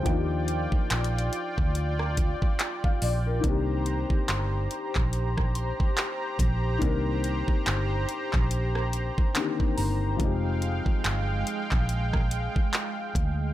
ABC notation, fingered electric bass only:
X:1
M:4/4
L:1/16
Q:"Swing 16ths" 1/4=71
K:Cm
V:1 name="Fingered electric bass" clef=bass
E,,3 z B,,,2 z D,,4 z3 B,,,2 | C,,3 z G,,,2 z B,,,4 z3 B,,,2 | C,,3 z G,,,2 z B,,,4 z3 G,,,2 | F,,,3 z G,,,2 z B,,,4 z3 D,,2 |]